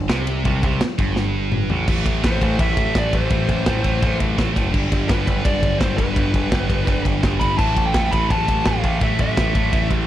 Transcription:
0.09 picked electric bass C2, distorted electric guitar C3, snare, ride
0.27 ride
0.45 picked electric bass C2, distorted electric guitar C3, kick, ride
0.63 picked electric bass C2, distorted electric guitar C3, kick, ride
0.81 muted distorted electric guitar stroke, muted picked electric bass stroke, snare, ride
0.99 picked electric bass G1, distorted electric guitar G2, kick, ride
1.16 snare
1.52 mid tom
1.70 picked electric bass A1, distorted electric guitar A2, floor tom
1.87 picked electric bass A1, distorted electric guitar A2 E3 A3, kick, crash
2.06 picked electric bass A1, kick, ride
2.23 picked electric bass A1, distorted electric guitar A2 E3 A3, lead electric guitar C5, kick, snare, ride
2.41 picked electric bass A1, distorted electric guitar A2 E3 A3, kick, ride
2.59 picked electric bass A1, distorted electric guitar A2 E3 A3, lead electric guitar E5, kick, ride
2.77 picked electric bass A1, kick, ride
2.94 picked electric bass A1, distorted electric guitar A2 E3 A3, kick, snare, ride
2.98 lead electric guitar D5
3.12 picked electric bass A1, distorted electric guitar A2 E3 A3, lead electric guitar C5, kick, ride
3.29 picked electric bass A1, distorted electric guitar A2 E3 A3, kick, ride
3.49 picked electric bass A1, kick, ride
3.65 picked electric bass A1, distorted electric guitar A2 E3 A3, kick, snare, ride
3.83 picked electric bass A1, distorted electric guitar A2 E3 A3, kick, ride
4.01 picked electric bass A1, distorted electric guitar A2 E3 A3, kick, ride
4.20 picked electric bass A1, kick, ride
4.37 picked electric bass A1, distorted electric guitar A2 E3 A3, kick, snare, ride
4.54 picked electric bass F#1, distorted electric guitar A2 E3 A3, kick, ride
4.71 picked electric bass G1, distorted electric guitar G2 D3 G3, kick, crash
4.92 picked electric bass G1, kick, ride
5.08 picked electric bass G1, distorted electric guitar G2 D3 G3, lead electric guitar B4, kick, snare, ride
5.25 picked electric bass G1, distorted electric guitar G2 D3 G3, kick, ride
5.43 picked electric bass G1, distorted electric guitar G2 D3 G3, lead electric guitar D5, kick, ride
5.62 picked electric bass G1, kick, ride
5.78 picked electric bass G1, distorted electric guitar G2 D3 G3, lead electric guitar C5, kick, snare, ride
5.97 picked electric bass G1, distorted electric guitar G2 D3 G3, lead electric guitar B4, kick, ride
6.14 picked electric bass G1, distorted electric guitar G2 D3 G3, kick, ride
6.34 picked electric bass G1, kick, ride
6.50 picked electric bass G1, distorted electric guitar G2 D3 G3, kick, snare, ride
6.68 picked electric bass G1, distorted electric guitar G2 D3 G3, kick, ride
6.85 picked electric bass G1, distorted electric guitar G2 D3 G3, kick, ride
7.05 picked electric bass G1, kick, ride
7.22 picked electric bass G1, distorted electric guitar G2 D3 G3, kick, snare, ride
7.39 picked electric bass G1, distorted electric guitar G2 D3 G3, lead electric guitar B5, kick, ride
7.57 picked electric bass A1, distorted electric guitar A2 E3 A3, lead electric guitar A5, kick, crash
7.77 picked electric bass A1, kick, ride
7.86 lead electric guitar G5
7.93 picked electric bass A1, distorted electric guitar A2 E3 A3, kick, snare, ride
8.11 picked electric bass A1, distorted electric guitar A2 E3 A3, lead electric guitar B5, kick, ride
8.29 picked electric bass A1, distorted electric guitar A2 E3 A3, lead electric guitar A5, kick, ride
8.48 picked electric bass A1, kick, ride
8.64 picked electric bass A1, distorted electric guitar A2 E3 A3, lead electric guitar F5, kick, snare, ride
8.83 picked electric bass A1, distorted electric guitar A2 E3 A3, kick, ride
9.01 picked electric bass A1, distorted electric guitar A2 E3 A3, lead electric guitar E5, kick, ride
9.19 picked electric bass A1, lead electric guitar E5, kick, ride
9.36 picked electric bass A1, distorted electric guitar A2 E3 A3, kick, snare, ride
9.53 picked electric bass A1, distorted electric guitar A2 E3 A3, kick, ride
9.71 picked electric bass A1, distorted electric guitar A2 E3 A3, kick, ride
9.91 picked electric bass A1, kick, ride

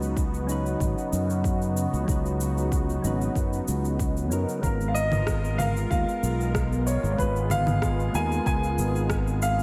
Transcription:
Already playing: fretless electric bass C#2, analog synth pad C#3 B3 D#4 F#4, synth keys F#3 C#4 D#4 B4
0.02 cabasa
0.17 kick, cabasa
0.34 cabasa
0.44 synth keys F#3 C#4
0.49 synth keys D#4 B4, cabasa
0.66 cabasa
0.80 fretless electric bass G#1, kick, cabasa
0.98 cabasa
1.12 fretless electric bass F#2, cabasa
1.30 cabasa
1.44 kick, cabasa
1.62 cabasa
1.77 cabasa
1.93 fretless electric bass C#2, cabasa
2.04 fretless electric bass C#2, synth keys F#3 C#4, kick
2.09 synth keys D#4 B4, cabasa
2.26 cabasa
2.41 cabasa
2.58 cabasa
2.72 kick, cabasa
2.90 cabasa
3.00 synth keys F#3 C#4
3.04 fretless electric bass G#1, synth keys D#4 B4, cabasa
3.21 cabasa
3.35 fretless electric bass F#2, kick, cabasa
3.53 cabasa
3.68 fretless electric bass C#2, cabasa
3.85 cabasa
3.99 kick, cabasa
4.17 cabasa
4.29 fretless electric bass F#2, synth keys F#3 C#4 D#4 A#4, cabasa
4.49 cabasa
4.59 fretless electric bass G#1, synth keys G#3 B3, analog synth pad G#3, grand piano A#4
4.63 analog synth pad B3 F4 A#4, synth keys F4 A#4, kick, cabasa
4.81 cabasa
4.88 grand piano F5
4.94 grand piano D#5, cabasa
5.12 low conga, cabasa
5.27 kick, cross-stick, cabasa
5.45 cabasa
5.55 synth keys G#3 B3, grand piano F5, low conga
5.60 synth keys F4 A#4, cabasa
5.77 cabasa
5.90 fretless electric bass D#2, grand piano F5, kick, cabasa
6.09 cabasa
6.23 fretless electric bass B1, cabasa
6.41 cabasa
6.55 kick, cross-stick, cabasa
6.73 cabasa
6.87 grand piano C#5, cabasa
7.03 fretless electric bass G#1, cabasa
7.12 synth keys G#3, grand piano C#5
7.17 fretless electric bass G#1, synth keys B3 F4, analog synth pad G#4, grand piano B4, kick, cabasa
7.22 synth keys B4
7.36 cabasa
7.50 grand piano F5, low conga, cabasa
7.67 low conga, cabasa
7.82 kick, cross-stick, cabasa
8.00 cabasa
8.10 fretless electric bass D#2, synth keys G#3 B3
8.15 synth keys F4 A#4, grand piano G#5, cabasa
8.32 cabasa
8.46 fretless electric bass C#2, grand piano G#5, kick, cabasa
8.64 cabasa
8.78 fretless electric bass G#1, cabasa
8.96 cabasa
9.10 kick, cross-stick, cabasa
9.27 cabasa
9.42 grand piano F5, cabasa
9.59 cabasa

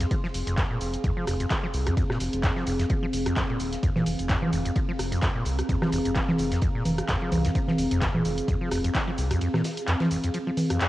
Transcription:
Already playing: ambient pad C4 G#4 F5 C6
0.00 acid bass F2, snare, closed hi-hat, cabasa
0.11 acid bass F3, kick, closed hi-hat, ride, cabasa
0.24 acid bass F3, snare
0.34 analog synth bass F1, open hi-hat, ride, cabasa
0.47 analog synth bass F1, acid bass F2, closed hi-hat, cabasa
0.57 acid bass F2, kick, snare, clap, closed hi-hat, ride, cabasa
0.70 acid bass A#2
0.81 analog synth bass F1, open hi-hat, ride, cabasa
0.94 closed hi-hat, ride, cabasa
1.04 acid bass F2, kick, closed hi-hat, ride, cabasa
1.17 acid bass F3
1.27 analog synth bass F1, acid bass F1, cross-stick, open hi-hat, ride, cabasa
1.40 acid bass F2, closed hi-hat, cabasa
1.50 acid bass F3, kick, snare, clap, closed hi-hat, ride, cabasa
1.63 acid bass F3
1.73 analog synth bass C2, open hi-hat, ride, cabasa
1.87 acid bass F2, cross-stick, closed hi-hat, cabasa
1.97 acid bass F2, kick, closed hi-hat, ride, cabasa
2.10 acid bass A#2, cross-stick, snare
2.20 analog synth bass F1, open hi-hat, ride, cabasa
2.33 analog synth bass F1, closed hi-hat, ride, cabasa
2.43 acid bass F2, kick, snare, clap, closed hi-hat, ride, cabasa
2.56 acid bass F3, snare
2.67 acid bass F1, analog synth bass F1, open hi-hat, ride, cabasa
2.79 acid bass F2, snare, closed hi-hat, cabasa
2.90 acid bass F3, kick, closed hi-hat, ride, cabasa
3.03 acid bass F3
3.13 analog synth bass F1, open hi-hat, ride, cabasa
3.26 acid bass F2, cross-stick, closed hi-hat, cabasa
3.31 ambient pad A#5
3.36 kick, snare, clap, closed hi-hat, ride, cabasa
3.49 acid bass A#2, ride
3.60 analog synth bass D#1, open hi-hat, ride, cabasa
3.73 snare, closed hi-hat, cabasa
3.83 acid bass F2, kick, closed hi-hat, ride, cabasa
3.96 acid bass A#2, snare, low conga
4.06 analog synth bass F1, open hi-hat, ride, cabasa
4.19 analog synth bass F1, closed hi-hat, cabasa
4.29 acid bass F2, kick, snare, clap, closed hi-hat, ride, cabasa
4.42 acid bass F3, low conga
4.53 acid bass F1, analog synth bass F1, open hi-hat, ride, cabasa
4.65 acid bass F2, closed hi-hat, ride, cabasa
4.76 acid bass F3, kick, closed hi-hat, ride, cabasa
4.89 acid bass F3
4.99 analog synth bass F1, cross-stick, open hi-hat, ride, cabasa
5.12 acid bass F2, closed hi-hat, cabasa
5.22 acid bass F2, kick, snare, clap, closed hi-hat, ride, cabasa
5.35 acid bass A#2
5.45 analog synth bass C2, open hi-hat, ride, cabasa
5.59 cross-stick, closed hi-hat, cabasa
5.69 acid bass F2, kick, closed hi-hat, ride, cabasa
5.82 acid bass F3, cross-stick, snare, low conga
5.92 analog synth bass F1, acid bass F1, open hi-hat, ride, cabasa
6.05 analog synth bass F1, acid bass F2, closed hi-hat, ride, cabasa
6.15 acid bass F3, kick, snare, clap, closed hi-hat, ride, cabasa
6.28 acid bass F3, snare, low conga
6.38 analog synth bass F1, open hi-hat, ride, cabasa
6.52 acid bass F2, snare, closed hi-hat, cabasa
6.62 acid bass F2, kick, closed hi-hat, ride, cabasa
6.75 acid bass A#2
6.85 analog synth bass F1, open hi-hat, low conga, cabasa
6.98 cross-stick, closed hi-hat, cabasa
7.09 acid bass F2, kick, snare, clap, closed hi-hat, ride, cabasa
7.21 acid bass F3, ride
7.32 acid bass F1, analog synth bass C2, open hi-hat, ride, low conga, cabasa
7.45 acid bass F2, snare, closed hi-hat, cabasa
7.55 acid bass F3, kick, closed hi-hat, ride, cabasa
7.68 acid bass F3, snare, low conga
7.78 analog synth bass F1, open hi-hat, ride, cabasa
7.91 analog synth bass F1, acid bass F2, closed hi-hat, cabasa
8.02 acid bass F2, kick, snare, clap, closed hi-hat, ride, cabasa
8.14 acid bass A#2, low conga
8.25 analog synth bass F1, open hi-hat, ride, cabasa
8.37 closed hi-hat, ride, cabasa
8.48 acid bass F2, kick, closed hi-hat, ride, cabasa
8.61 acid bass F3
8.71 acid bass F1, analog synth bass F1, cross-stick, open hi-hat, ride, cabasa
8.84 acid bass F2, closed hi-hat, cabasa
8.94 acid bass F3, kick, snare, clap, closed hi-hat, ride, cabasa
9.08 acid bass F3
9.18 analog synth bass C2, open hi-hat, ride, cabasa
9.31 acid bass F2, cross-stick, closed hi-hat, cabasa
9.41 acid bass F2, closed hi-hat, ride, cabasa
9.54 acid bass A#2, cross-stick, snare, low conga
9.64 snare, open hi-hat, ride, cabasa
9.77 closed hi-hat, ride, cabasa
9.88 acid bass F2, clap, closed hi-hat, ride, cabasa
10.00 acid bass F3, snare, ride, low conga
10.11 acid bass F1, open hi-hat, ride, cabasa
10.23 acid bass F2, closed hi-hat, ride, cabasa
10.34 acid bass F3, closed hi-hat, ride, cabasa
10.47 acid bass F3
10.57 open hi-hat, ride, low conga, cabasa
10.70 acid bass F2, cross-stick, closed hi-hat, cabasa
10.80 acid bass F2, clap, closed hi-hat, ride, cabasa

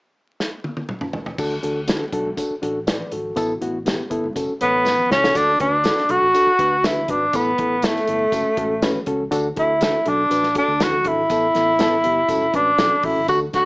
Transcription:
0.40 snare
0.64 high tom
0.77 high tom
0.89 mid tom
1.01 mid tom
1.13 floor tom
1.26 floor tom
1.38 fingered electric bass D2, reed electric piano D3 D4 F#4 A4, kick, crash, tambourine, muted conga
1.63 fingered electric bass D2, reed electric piano D4 F#4 A4, closed hi-hat, muted conga
1.87 reed electric piano D4 F#4 A4, snare, closed hi-hat, tambourine, high conga
2.12 fingered electric bass B1, reed electric piano D4 F#4 A4, kick, closed hi-hat
2.25 low conga
2.37 reed electric piano D4 F#4 A4, kick, closed hi-hat, tambourine
2.50 muted fingered electric bass stroke
2.62 fingered electric bass A1, reed electric piano D4 F#4 A4, closed hi-hat
2.87 reed electric piano B4 D5, snare, closed hi-hat, tambourine, high conga
3.00 high conga
3.12 fingered electric bass G#1, reed electric piano F#4 A4, closed hi-hat
3.36 fingered electric bass A1, reed electric piano A2 B3 E4 A4, kick, closed hi-hat, tambourine, muted conga
3.61 fingered electric bass A1, reed electric piano B3 E4 F#4, closed hi-hat, muted conga
3.85 reed electric piano B3 E4 G4, snare, closed hi-hat, tambourine, high conga
4.10 fingered electric bass G1, reed electric piano B3 E4 A4, kick, closed hi-hat
4.24 low conga
4.35 fingered electric bass F#1, reed electric piano C#4 F#4 A4, kick, closed hi-hat, tambourine, low conga
4.49 muted fingered electric bass stroke
4.61 fingered electric bass A1, tenor saxophone B3, reed electric piano A4 C#5, closed hi-hat, low conga
4.85 reed electric piano B4, snare, tambourine, high conga
4.98 high conga
5.10 fingered electric bass C#2, tenor saxophone C#4, reed electric piano F#4 A4, snare
5.24 snare
5.34 fingered electric bass D2, reed electric piano D3 D4 F#4 A4, tenor saxophone D4, kick, closed hi-hat, tambourine, muted conga
5.59 fingered electric bass D2, reed electric piano D4 F#4 B4, tenor saxophone D4, kick, closed hi-hat, muted conga
5.84 reed electric piano D4 F#4 A4, snare, closed hi-hat, tambourine, high conga
5.98 snare
6.09 fingered electric bass B1, reed electric piano D4 F#4 A4, tenor saxophone F#4, closed hi-hat
6.22 fingered electric bass A1
6.34 reed electric piano D4 F#4 A4, closed hi-hat, tambourine, muted conga
6.47 muted fingered electric bass stroke
6.59 fingered electric bass D2, reed electric piano D4 F#4 B4, kick, closed hi-hat
6.83 reed electric piano D4 F#4 B4, tenor saxophone E4, snare, closed hi-hat, tambourine, high conga
6.96 high conga
7.08 fingered electric bass G#1, reed electric piano D4 F#4 B4, tenor saxophone D4, kick, closed hi-hat
7.33 fingered electric bass A1, reed electric piano A2 B3 E4 A4, tenor saxophone B3, kick, closed hi-hat, tambourine, muted conga
7.58 fingered electric bass A1, reed electric piano B3 E4 A4, kick, closed hi-hat, muted conga
7.82 tenor saxophone A3, reed electric piano B3 E4 A4, snare, closed hi-hat, tambourine, high conga
7.96 snare
8.08 fingered electric bass G1, reed electric piano B3 E4 A4, closed hi-hat
8.32 fingered electric bass F#1, reed electric piano C#4 F#4 A4, kick, closed hi-hat, tambourine, low conga
8.57 fingered electric bass A1, reed electric piano C#4 F#4 A4, kick, closed hi-hat, low conga
8.82 reed electric piano C#4 F#4 B4, snare, closed hi-hat, tambourine, high conga
8.95 high conga
9.06 fingered electric bass C#2, reed electric piano C#4 F#4 A4, kick, closed hi-hat
9.31 fingered electric bass D2, reed electric piano D3 D4 F#4 A4, kick, closed hi-hat, tambourine, muted conga
9.56 fingered electric bass D2, reed electric piano D4 F#4 A4, tenor saxophone E4, kick, closed hi-hat, muted conga
9.81 reed electric piano D4 F#4 A4, snare, closed hi-hat, tambourine, high conga
10.05 fingered electric bass B1, reed electric piano D4 F#4 A4, tenor saxophone D4, closed hi-hat
10.30 fingered electric bass A1, reed electric piano D4 F#4 B4, closed hi-hat, tambourine
10.43 snare
10.55 reed electric piano D4 F#4 A4, tenor saxophone D4, kick, closed hi-hat
10.68 fingered electric bass D2
10.80 reed electric piano D4 F#4 A4, tenor saxophone F#4, snare, closed hi-hat, tambourine, high conga
10.93 high conga
11.05 fingered electric bass G#1, reed electric piano D4 F#4 A4, tenor saxophone E4, kick, closed hi-hat
11.30 fingered electric bass A1, reed electric piano A2 B3 E4 A4, kick, closed hi-hat, tambourine, muted conga
11.55 fingered electric bass A1, reed electric piano B3 E4 A4, snare, closed hi-hat, muted conga
11.79 reed electric piano B3 E4 A4, snare, closed hi-hat, tambourine, high conga
12.04 fingered electric bass G1, reed electric piano B3 E4 G4, closed hi-hat
12.28 fingered electric bass F#1, reed electric piano C#4 F#4 A4, kick, closed hi-hat, tambourine, muted conga, low conga
12.53 fingered electric bass A1, reed electric piano C#4 F#4 B4, tenor saxophone D4, kick, closed hi-hat, low conga
12.78 fingered electric bass B1, reed electric piano C#4 F#4 A4, snare, closed hi-hat, tambourine, high conga
12.92 high conga
13.03 fingered electric bass A1, reed electric piano C#4 F#4 A4, tenor saxophone E4, kick, open hi-hat
13.17 fingered electric bass G1
13.28 fingered electric bass D2, reed electric piano D3 D4 F#4 A4, tenor saxophone F#4, kick, closed hi-hat, tambourine, muted conga
13.53 fingered electric bass D2, reed electric piano D4 F#4 A4, tenor saxophone F#4, kick, snare, closed hi-hat, muted conga

